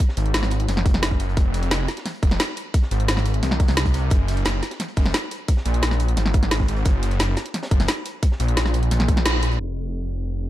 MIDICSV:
0, 0, Header, 1, 3, 480
1, 0, Start_track
1, 0, Time_signature, 4, 2, 24, 8
1, 0, Tempo, 342857
1, 14693, End_track
2, 0, Start_track
2, 0, Title_t, "Detuned saw bass"
2, 0, Program_c, 0, 39
2, 238, Note_on_c, 0, 32, 96
2, 939, Note_off_c, 0, 32, 0
2, 958, Note_on_c, 0, 30, 97
2, 1659, Note_off_c, 0, 30, 0
2, 1678, Note_on_c, 0, 30, 100
2, 1899, Note_off_c, 0, 30, 0
2, 1918, Note_on_c, 0, 29, 97
2, 2619, Note_off_c, 0, 29, 0
2, 3118, Note_on_c, 0, 29, 94
2, 3339, Note_off_c, 0, 29, 0
2, 4078, Note_on_c, 0, 32, 99
2, 4779, Note_off_c, 0, 32, 0
2, 4798, Note_on_c, 0, 36, 95
2, 5739, Note_off_c, 0, 36, 0
2, 5758, Note_on_c, 0, 30, 95
2, 6459, Note_off_c, 0, 30, 0
2, 6958, Note_on_c, 0, 30, 93
2, 7179, Note_off_c, 0, 30, 0
2, 7918, Note_on_c, 0, 34, 99
2, 8619, Note_off_c, 0, 34, 0
2, 8638, Note_on_c, 0, 32, 94
2, 9339, Note_off_c, 0, 32, 0
2, 9358, Note_on_c, 0, 32, 105
2, 9579, Note_off_c, 0, 32, 0
2, 9598, Note_on_c, 0, 30, 98
2, 10299, Note_off_c, 0, 30, 0
2, 10798, Note_on_c, 0, 30, 90
2, 11019, Note_off_c, 0, 30, 0
2, 11758, Note_on_c, 0, 34, 99
2, 12459, Note_off_c, 0, 34, 0
2, 12478, Note_on_c, 0, 34, 100
2, 13419, Note_off_c, 0, 34, 0
2, 13438, Note_on_c, 0, 29, 83
2, 14693, Note_off_c, 0, 29, 0
2, 14693, End_track
3, 0, Start_track
3, 0, Title_t, "Drums"
3, 121, Note_on_c, 9, 38, 62
3, 238, Note_on_c, 9, 42, 68
3, 246, Note_off_c, 9, 42, 0
3, 246, Note_on_c, 9, 42, 64
3, 261, Note_off_c, 9, 38, 0
3, 359, Note_off_c, 9, 42, 0
3, 359, Note_on_c, 9, 42, 37
3, 478, Note_off_c, 9, 42, 0
3, 478, Note_on_c, 9, 42, 84
3, 479, Note_off_c, 9, 42, 0
3, 479, Note_on_c, 9, 38, 123
3, 479, Note_on_c, 9, 42, 94
3, 483, Note_off_c, 9, 38, 0
3, 483, Note_on_c, 9, 38, 109
3, 599, Note_off_c, 9, 38, 0
3, 599, Note_on_c, 9, 38, 36
3, 599, Note_on_c, 9, 40, 32
3, 619, Note_off_c, 9, 42, 0
3, 707, Note_on_c, 9, 42, 73
3, 719, Note_off_c, 9, 42, 0
3, 719, Note_on_c, 9, 42, 61
3, 739, Note_off_c, 9, 38, 0
3, 739, Note_off_c, 9, 40, 0
3, 839, Note_off_c, 9, 42, 0
3, 839, Note_on_c, 9, 42, 35
3, 959, Note_off_c, 9, 42, 0
3, 959, Note_on_c, 9, 40, 37
3, 959, Note_on_c, 9, 42, 99
3, 964, Note_off_c, 9, 42, 0
3, 964, Note_on_c, 9, 42, 96
3, 1079, Note_off_c, 9, 40, 0
3, 1079, Note_on_c, 9, 40, 59
3, 1104, Note_off_c, 9, 42, 0
3, 1198, Note_on_c, 9, 36, 113
3, 1199, Note_on_c, 9, 42, 60
3, 1207, Note_off_c, 9, 42, 0
3, 1207, Note_on_c, 9, 42, 70
3, 1219, Note_off_c, 9, 40, 0
3, 1319, Note_off_c, 9, 42, 0
3, 1319, Note_on_c, 9, 40, 51
3, 1319, Note_on_c, 9, 42, 38
3, 1338, Note_off_c, 9, 36, 0
3, 1430, Note_on_c, 9, 38, 119
3, 1438, Note_off_c, 9, 38, 0
3, 1438, Note_off_c, 9, 42, 0
3, 1438, Note_on_c, 9, 38, 127
3, 1438, Note_on_c, 9, 42, 96
3, 1446, Note_off_c, 9, 42, 0
3, 1446, Note_on_c, 9, 42, 95
3, 1459, Note_off_c, 9, 40, 0
3, 1558, Note_off_c, 9, 38, 0
3, 1558, Note_on_c, 9, 36, 60
3, 1558, Note_on_c, 9, 38, 57
3, 1586, Note_off_c, 9, 42, 0
3, 1678, Note_on_c, 9, 42, 68
3, 1680, Note_off_c, 9, 42, 0
3, 1680, Note_on_c, 9, 42, 62
3, 1698, Note_off_c, 9, 36, 0
3, 1698, Note_off_c, 9, 38, 0
3, 1809, Note_off_c, 9, 42, 0
3, 1809, Note_on_c, 9, 42, 38
3, 1918, Note_off_c, 9, 42, 0
3, 1918, Note_on_c, 9, 36, 122
3, 1918, Note_on_c, 9, 42, 90
3, 1919, Note_off_c, 9, 42, 0
3, 1919, Note_on_c, 9, 42, 83
3, 2058, Note_off_c, 9, 36, 0
3, 2059, Note_off_c, 9, 42, 0
3, 2158, Note_on_c, 9, 42, 63
3, 2161, Note_off_c, 9, 42, 0
3, 2161, Note_on_c, 9, 42, 72
3, 2278, Note_off_c, 9, 42, 0
3, 2278, Note_on_c, 9, 42, 36
3, 2283, Note_off_c, 9, 42, 0
3, 2283, Note_on_c, 9, 42, 43
3, 2395, Note_on_c, 9, 38, 123
3, 2396, Note_off_c, 9, 42, 0
3, 2396, Note_on_c, 9, 42, 92
3, 2398, Note_off_c, 9, 38, 0
3, 2398, Note_off_c, 9, 42, 0
3, 2398, Note_on_c, 9, 38, 125
3, 2398, Note_on_c, 9, 42, 89
3, 2538, Note_off_c, 9, 38, 0
3, 2538, Note_off_c, 9, 42, 0
3, 2634, Note_on_c, 9, 42, 59
3, 2638, Note_off_c, 9, 42, 0
3, 2638, Note_on_c, 9, 38, 37
3, 2638, Note_on_c, 9, 42, 62
3, 2758, Note_off_c, 9, 42, 0
3, 2758, Note_on_c, 9, 42, 36
3, 2768, Note_off_c, 9, 38, 0
3, 2768, Note_on_c, 9, 38, 49
3, 2878, Note_off_c, 9, 42, 0
3, 2878, Note_on_c, 9, 40, 36
3, 2878, Note_on_c, 9, 42, 89
3, 2884, Note_off_c, 9, 42, 0
3, 2884, Note_on_c, 9, 42, 86
3, 2908, Note_off_c, 9, 38, 0
3, 3002, Note_off_c, 9, 42, 0
3, 3002, Note_on_c, 9, 42, 39
3, 3018, Note_off_c, 9, 40, 0
3, 3118, Note_off_c, 9, 42, 0
3, 3118, Note_on_c, 9, 36, 111
3, 3118, Note_on_c, 9, 42, 63
3, 3119, Note_on_c, 9, 46, 85
3, 3238, Note_off_c, 9, 42, 0
3, 3238, Note_on_c, 9, 40, 50
3, 3238, Note_on_c, 9, 42, 37
3, 3258, Note_off_c, 9, 36, 0
3, 3259, Note_off_c, 9, 46, 0
3, 3358, Note_off_c, 9, 42, 0
3, 3358, Note_on_c, 9, 38, 121
3, 3358, Note_on_c, 9, 42, 90
3, 3364, Note_off_c, 9, 42, 0
3, 3364, Note_on_c, 9, 42, 89
3, 3367, Note_off_c, 9, 38, 0
3, 3367, Note_on_c, 9, 38, 109
3, 3378, Note_off_c, 9, 40, 0
3, 3480, Note_off_c, 9, 38, 0
3, 3480, Note_on_c, 9, 38, 42
3, 3504, Note_off_c, 9, 42, 0
3, 3595, Note_on_c, 9, 42, 65
3, 3598, Note_off_c, 9, 42, 0
3, 3598, Note_on_c, 9, 42, 65
3, 3620, Note_off_c, 9, 38, 0
3, 3738, Note_off_c, 9, 42, 0
3, 3836, Note_on_c, 9, 42, 85
3, 3838, Note_off_c, 9, 42, 0
3, 3838, Note_on_c, 9, 36, 116
3, 3838, Note_on_c, 9, 42, 90
3, 3954, Note_on_c, 9, 38, 59
3, 3978, Note_off_c, 9, 36, 0
3, 3978, Note_off_c, 9, 42, 0
3, 4076, Note_on_c, 9, 42, 70
3, 4078, Note_off_c, 9, 42, 0
3, 4078, Note_on_c, 9, 42, 61
3, 4094, Note_off_c, 9, 38, 0
3, 4198, Note_off_c, 9, 42, 0
3, 4198, Note_on_c, 9, 42, 37
3, 4316, Note_off_c, 9, 42, 0
3, 4316, Note_on_c, 9, 42, 100
3, 4318, Note_off_c, 9, 42, 0
3, 4318, Note_on_c, 9, 38, 119
3, 4318, Note_on_c, 9, 42, 91
3, 4323, Note_off_c, 9, 38, 0
3, 4323, Note_on_c, 9, 38, 115
3, 4438, Note_off_c, 9, 38, 0
3, 4438, Note_on_c, 9, 38, 37
3, 4438, Note_on_c, 9, 40, 30
3, 4458, Note_off_c, 9, 42, 0
3, 4558, Note_on_c, 9, 42, 61
3, 4562, Note_off_c, 9, 42, 0
3, 4562, Note_on_c, 9, 42, 69
3, 4578, Note_off_c, 9, 38, 0
3, 4578, Note_off_c, 9, 40, 0
3, 4678, Note_off_c, 9, 42, 0
3, 4678, Note_on_c, 9, 42, 33
3, 4798, Note_off_c, 9, 42, 0
3, 4798, Note_on_c, 9, 40, 34
3, 4798, Note_on_c, 9, 42, 90
3, 4799, Note_off_c, 9, 42, 0
3, 4799, Note_on_c, 9, 42, 84
3, 4918, Note_off_c, 9, 40, 0
3, 4918, Note_on_c, 9, 40, 54
3, 4939, Note_off_c, 9, 42, 0
3, 5037, Note_on_c, 9, 42, 54
3, 5038, Note_off_c, 9, 42, 0
3, 5038, Note_on_c, 9, 36, 109
3, 5038, Note_on_c, 9, 42, 61
3, 5058, Note_off_c, 9, 40, 0
3, 5151, Note_off_c, 9, 42, 0
3, 5151, Note_on_c, 9, 42, 81
3, 5159, Note_off_c, 9, 42, 0
3, 5159, Note_on_c, 9, 40, 48
3, 5159, Note_on_c, 9, 42, 34
3, 5178, Note_off_c, 9, 36, 0
3, 5278, Note_off_c, 9, 42, 0
3, 5278, Note_on_c, 9, 38, 119
3, 5278, Note_on_c, 9, 42, 91
3, 5299, Note_off_c, 9, 40, 0
3, 5393, Note_off_c, 9, 42, 0
3, 5393, Note_on_c, 9, 42, 66
3, 5398, Note_on_c, 9, 36, 62
3, 5418, Note_off_c, 9, 38, 0
3, 5518, Note_off_c, 9, 42, 0
3, 5518, Note_on_c, 9, 42, 67
3, 5523, Note_off_c, 9, 42, 0
3, 5523, Note_on_c, 9, 42, 84
3, 5538, Note_off_c, 9, 36, 0
3, 5663, Note_off_c, 9, 42, 0
3, 5744, Note_on_c, 9, 42, 82
3, 5758, Note_off_c, 9, 42, 0
3, 5758, Note_on_c, 9, 36, 117
3, 5758, Note_on_c, 9, 42, 89
3, 5898, Note_off_c, 9, 36, 0
3, 5898, Note_off_c, 9, 42, 0
3, 5998, Note_on_c, 9, 42, 65
3, 6009, Note_off_c, 9, 42, 0
3, 6009, Note_on_c, 9, 42, 73
3, 6118, Note_off_c, 9, 42, 0
3, 6118, Note_on_c, 9, 42, 35
3, 6228, Note_off_c, 9, 42, 0
3, 6228, Note_on_c, 9, 42, 84
3, 6235, Note_on_c, 9, 38, 120
3, 6238, Note_off_c, 9, 38, 0
3, 6238, Note_off_c, 9, 42, 0
3, 6238, Note_on_c, 9, 38, 122
3, 6238, Note_on_c, 9, 42, 85
3, 6378, Note_off_c, 9, 38, 0
3, 6378, Note_off_c, 9, 42, 0
3, 6476, Note_on_c, 9, 42, 72
3, 6478, Note_off_c, 9, 42, 0
3, 6478, Note_on_c, 9, 38, 36
3, 6478, Note_on_c, 9, 42, 58
3, 6594, Note_off_c, 9, 38, 0
3, 6594, Note_on_c, 9, 38, 51
3, 6598, Note_off_c, 9, 42, 0
3, 6598, Note_on_c, 9, 42, 37
3, 6717, Note_off_c, 9, 42, 0
3, 6717, Note_on_c, 9, 42, 88
3, 6718, Note_off_c, 9, 42, 0
3, 6718, Note_on_c, 9, 40, 34
3, 6718, Note_on_c, 9, 42, 85
3, 6734, Note_off_c, 9, 38, 0
3, 6837, Note_off_c, 9, 42, 0
3, 6837, Note_on_c, 9, 42, 40
3, 6858, Note_off_c, 9, 40, 0
3, 6950, Note_on_c, 9, 46, 82
3, 6958, Note_off_c, 9, 42, 0
3, 6958, Note_on_c, 9, 36, 104
3, 6958, Note_on_c, 9, 42, 64
3, 7078, Note_off_c, 9, 42, 0
3, 7078, Note_on_c, 9, 40, 47
3, 7078, Note_on_c, 9, 42, 36
3, 7090, Note_off_c, 9, 46, 0
3, 7098, Note_off_c, 9, 36, 0
3, 7191, Note_on_c, 9, 38, 111
3, 7198, Note_off_c, 9, 38, 0
3, 7198, Note_off_c, 9, 42, 0
3, 7198, Note_on_c, 9, 38, 121
3, 7198, Note_on_c, 9, 42, 90
3, 7201, Note_off_c, 9, 42, 0
3, 7201, Note_on_c, 9, 42, 86
3, 7218, Note_off_c, 9, 40, 0
3, 7317, Note_off_c, 9, 38, 0
3, 7317, Note_on_c, 9, 38, 47
3, 7341, Note_off_c, 9, 42, 0
3, 7438, Note_on_c, 9, 42, 64
3, 7442, Note_off_c, 9, 42, 0
3, 7442, Note_on_c, 9, 42, 64
3, 7457, Note_off_c, 9, 38, 0
3, 7582, Note_off_c, 9, 42, 0
3, 7678, Note_on_c, 9, 36, 108
3, 7678, Note_on_c, 9, 42, 96
3, 7687, Note_off_c, 9, 42, 0
3, 7687, Note_on_c, 9, 42, 80
3, 7798, Note_on_c, 9, 38, 64
3, 7818, Note_off_c, 9, 36, 0
3, 7827, Note_off_c, 9, 42, 0
3, 7914, Note_on_c, 9, 42, 71
3, 7918, Note_off_c, 9, 42, 0
3, 7918, Note_on_c, 9, 42, 67
3, 7938, Note_off_c, 9, 38, 0
3, 8038, Note_off_c, 9, 42, 0
3, 8038, Note_on_c, 9, 42, 37
3, 8151, Note_on_c, 9, 38, 109
3, 8158, Note_off_c, 9, 38, 0
3, 8158, Note_off_c, 9, 42, 0
3, 8158, Note_on_c, 9, 38, 116
3, 8158, Note_on_c, 9, 42, 97
3, 8167, Note_off_c, 9, 42, 0
3, 8167, Note_on_c, 9, 42, 83
3, 8278, Note_off_c, 9, 38, 0
3, 8278, Note_on_c, 9, 38, 34
3, 8278, Note_on_c, 9, 40, 30
3, 8307, Note_off_c, 9, 42, 0
3, 8395, Note_on_c, 9, 42, 70
3, 8398, Note_off_c, 9, 42, 0
3, 8398, Note_on_c, 9, 42, 62
3, 8418, Note_off_c, 9, 38, 0
3, 8418, Note_off_c, 9, 40, 0
3, 8518, Note_off_c, 9, 42, 0
3, 8518, Note_on_c, 9, 42, 36
3, 8637, Note_off_c, 9, 42, 0
3, 8637, Note_on_c, 9, 42, 82
3, 8638, Note_off_c, 9, 42, 0
3, 8638, Note_on_c, 9, 40, 36
3, 8638, Note_on_c, 9, 42, 92
3, 8758, Note_off_c, 9, 40, 0
3, 8758, Note_on_c, 9, 40, 52
3, 8778, Note_off_c, 9, 42, 0
3, 8869, Note_on_c, 9, 42, 58
3, 8878, Note_off_c, 9, 42, 0
3, 8878, Note_on_c, 9, 36, 105
3, 8878, Note_on_c, 9, 42, 65
3, 8898, Note_off_c, 9, 40, 0
3, 8998, Note_off_c, 9, 42, 0
3, 8998, Note_on_c, 9, 40, 47
3, 8998, Note_on_c, 9, 42, 37
3, 9018, Note_off_c, 9, 36, 0
3, 9115, Note_off_c, 9, 42, 0
3, 9115, Note_on_c, 9, 42, 83
3, 9118, Note_off_c, 9, 42, 0
3, 9118, Note_on_c, 9, 38, 121
3, 9118, Note_on_c, 9, 42, 94
3, 9120, Note_off_c, 9, 38, 0
3, 9120, Note_on_c, 9, 38, 106
3, 9138, Note_off_c, 9, 40, 0
3, 9238, Note_on_c, 9, 36, 59
3, 9246, Note_off_c, 9, 38, 0
3, 9246, Note_on_c, 9, 38, 66
3, 9258, Note_off_c, 9, 42, 0
3, 9353, Note_on_c, 9, 42, 61
3, 9358, Note_off_c, 9, 42, 0
3, 9358, Note_on_c, 9, 42, 68
3, 9378, Note_off_c, 9, 36, 0
3, 9386, Note_off_c, 9, 38, 0
3, 9470, Note_off_c, 9, 42, 0
3, 9470, Note_on_c, 9, 42, 40
3, 9591, Note_off_c, 9, 42, 0
3, 9591, Note_on_c, 9, 42, 88
3, 9599, Note_off_c, 9, 42, 0
3, 9599, Note_on_c, 9, 36, 108
3, 9599, Note_on_c, 9, 42, 100
3, 9739, Note_off_c, 9, 36, 0
3, 9739, Note_off_c, 9, 42, 0
3, 9839, Note_on_c, 9, 42, 68
3, 9842, Note_off_c, 9, 42, 0
3, 9842, Note_on_c, 9, 42, 64
3, 9954, Note_off_c, 9, 42, 0
3, 9954, Note_on_c, 9, 42, 42
3, 9959, Note_off_c, 9, 42, 0
3, 9959, Note_on_c, 9, 42, 39
3, 10072, Note_off_c, 9, 42, 0
3, 10072, Note_on_c, 9, 42, 85
3, 10075, Note_on_c, 9, 38, 120
3, 10079, Note_off_c, 9, 38, 0
3, 10079, Note_off_c, 9, 42, 0
3, 10079, Note_on_c, 9, 38, 111
3, 10079, Note_on_c, 9, 42, 96
3, 10219, Note_off_c, 9, 38, 0
3, 10219, Note_off_c, 9, 42, 0
3, 10312, Note_on_c, 9, 42, 78
3, 10317, Note_on_c, 9, 38, 104
3, 10319, Note_off_c, 9, 38, 0
3, 10319, Note_off_c, 9, 42, 0
3, 10319, Note_on_c, 9, 38, 31
3, 10319, Note_on_c, 9, 42, 66
3, 10439, Note_off_c, 9, 42, 0
3, 10439, Note_on_c, 9, 42, 40
3, 10459, Note_off_c, 9, 38, 0
3, 10559, Note_off_c, 9, 42, 0
3, 10559, Note_on_c, 9, 40, 35
3, 10559, Note_on_c, 9, 42, 97
3, 10564, Note_off_c, 9, 42, 0
3, 10564, Note_on_c, 9, 42, 61
3, 10678, Note_on_c, 9, 38, 112
3, 10684, Note_off_c, 9, 42, 0
3, 10684, Note_on_c, 9, 42, 81
3, 10699, Note_off_c, 9, 40, 0
3, 10798, Note_on_c, 9, 36, 100
3, 10799, Note_off_c, 9, 42, 0
3, 10799, Note_on_c, 9, 42, 69
3, 10818, Note_off_c, 9, 38, 0
3, 10919, Note_off_c, 9, 42, 0
3, 10919, Note_on_c, 9, 40, 49
3, 10919, Note_on_c, 9, 42, 38
3, 10920, Note_off_c, 9, 42, 0
3, 10920, Note_on_c, 9, 42, 61
3, 10938, Note_off_c, 9, 36, 0
3, 11029, Note_off_c, 9, 42, 0
3, 11029, Note_on_c, 9, 42, 93
3, 11033, Note_on_c, 9, 38, 115
3, 11038, Note_off_c, 9, 38, 0
3, 11038, Note_off_c, 9, 42, 0
3, 11038, Note_on_c, 9, 38, 119
3, 11038, Note_on_c, 9, 42, 93
3, 11059, Note_off_c, 9, 40, 0
3, 11150, Note_off_c, 9, 38, 0
3, 11150, Note_on_c, 9, 38, 43
3, 11178, Note_off_c, 9, 42, 0
3, 11278, Note_on_c, 9, 42, 73
3, 11290, Note_off_c, 9, 38, 0
3, 11418, Note_off_c, 9, 42, 0
3, 11516, Note_on_c, 9, 42, 83
3, 11518, Note_off_c, 9, 42, 0
3, 11518, Note_on_c, 9, 36, 107
3, 11518, Note_on_c, 9, 42, 99
3, 11644, Note_on_c, 9, 38, 55
3, 11658, Note_off_c, 9, 36, 0
3, 11658, Note_off_c, 9, 42, 0
3, 11758, Note_on_c, 9, 42, 69
3, 11759, Note_off_c, 9, 42, 0
3, 11759, Note_on_c, 9, 42, 78
3, 11784, Note_off_c, 9, 38, 0
3, 11878, Note_off_c, 9, 42, 0
3, 11878, Note_on_c, 9, 42, 38
3, 11998, Note_off_c, 9, 42, 0
3, 11998, Note_on_c, 9, 38, 114
3, 11998, Note_on_c, 9, 42, 100
3, 12001, Note_off_c, 9, 38, 0
3, 12001, Note_on_c, 9, 38, 125
3, 12005, Note_off_c, 9, 42, 0
3, 12005, Note_on_c, 9, 42, 96
3, 12118, Note_off_c, 9, 38, 0
3, 12118, Note_on_c, 9, 38, 34
3, 12118, Note_on_c, 9, 40, 31
3, 12145, Note_off_c, 9, 42, 0
3, 12233, Note_on_c, 9, 42, 67
3, 12238, Note_off_c, 9, 42, 0
3, 12238, Note_on_c, 9, 42, 64
3, 12258, Note_off_c, 9, 38, 0
3, 12258, Note_off_c, 9, 40, 0
3, 12358, Note_off_c, 9, 42, 0
3, 12358, Note_on_c, 9, 42, 41
3, 12478, Note_off_c, 9, 42, 0
3, 12478, Note_on_c, 9, 40, 38
3, 12478, Note_on_c, 9, 42, 99
3, 12486, Note_off_c, 9, 42, 0
3, 12486, Note_on_c, 9, 42, 83
3, 12598, Note_off_c, 9, 40, 0
3, 12598, Note_off_c, 9, 42, 0
3, 12598, Note_on_c, 9, 40, 54
3, 12598, Note_on_c, 9, 42, 41
3, 12716, Note_off_c, 9, 42, 0
3, 12716, Note_on_c, 9, 42, 70
3, 12718, Note_off_c, 9, 42, 0
3, 12718, Note_on_c, 9, 36, 101
3, 12718, Note_on_c, 9, 42, 70
3, 12738, Note_off_c, 9, 40, 0
3, 12838, Note_off_c, 9, 42, 0
3, 12838, Note_on_c, 9, 40, 50
3, 12838, Note_on_c, 9, 42, 41
3, 12858, Note_off_c, 9, 36, 0
3, 12955, Note_off_c, 9, 42, 0
3, 12955, Note_on_c, 9, 42, 81
3, 12958, Note_off_c, 9, 42, 0
3, 12958, Note_on_c, 9, 38, 122
3, 12958, Note_on_c, 9, 42, 102
3, 12961, Note_off_c, 9, 38, 0
3, 12961, Note_on_c, 9, 38, 118
3, 12978, Note_off_c, 9, 40, 0
3, 13075, Note_off_c, 9, 38, 0
3, 13075, Note_on_c, 9, 38, 58
3, 13098, Note_off_c, 9, 42, 0
3, 13194, Note_on_c, 9, 42, 66
3, 13198, Note_off_c, 9, 42, 0
3, 13198, Note_on_c, 9, 42, 70
3, 13215, Note_off_c, 9, 38, 0
3, 13320, Note_off_c, 9, 42, 0
3, 13320, Note_on_c, 9, 42, 42
3, 13460, Note_off_c, 9, 42, 0
3, 14638, Note_on_c, 9, 82, 54
3, 14693, Note_off_c, 9, 82, 0
3, 14693, End_track
0, 0, End_of_file